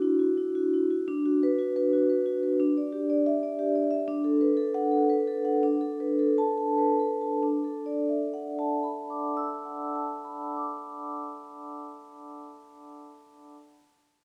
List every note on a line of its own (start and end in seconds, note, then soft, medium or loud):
0.00 1.03 D4 medium
0.00 0.02 E4 soft
0.00 0.30 E4 soft
0.00 0.12 F#4 medium
0.19 0.48 F#4 soft
0.37 0.66 E4 soft
0.55 0.83 F#4 soft
0.74 1.01 E4 soft
0.91 1.08 F#4 soft
1.08 2.55 D4 medium
1.26 1.52 F#4 soft
1.43 1.69 B4 medium
1.59 1.85 F#4 soft
1.76 2.02 B4 soft
1.93 2.19 F#4 soft
2.10 2.36 B4 soft
2.26 2.52 F#4 soft
2.43 2.59 B4 soft
2.60 4.04 D4 medium
2.77 3.03 D5 soft
2.93 3.18 G4 soft
3.10 3.35 D5 soft
3.26 3.52 E5 medium
3.43 3.68 D5 soft
3.59 3.85 G4 soft
3.75 4.01 D5 soft
3.91 4.07 E5 soft
4.08 5.59 D4 medium
4.24 4.51 A4 soft
4.41 4.68 B4 soft
4.57 4.84 A4 soft
4.74 5.02 F#5 medium
4.92 5.19 A4 soft
5.10 5.38 B4 soft
5.28 5.56 A4 soft
5.45 5.63 F#5 soft
5.63 7.39 D4 medium
5.81 6.11 A4 soft
6.00 6.30 B4 soft
6.19 6.50 A4 soft
6.38 6.70 A5 medium
6.58 6.90 A4 soft
6.78 7.12 B4 soft
7.00 7.34 A4 soft
7.21 7.43 A5 soft
7.43 10.74 D4 soft
7.64 10.95 A4 soft
7.86 11.17 D5 soft
8.09 11.40 E5 soft
8.34 9.64 F#5 soft
8.59 9.94 A5 soft
8.83 10.23 B5 soft
9.10 10.55 D6 soft
9.37 12.68 E6 soft
9.65 12.80 F#5 soft
9.96 12.80 A5 soft
10.25 12.80 B5 soft
10.56 12.80 D6 soft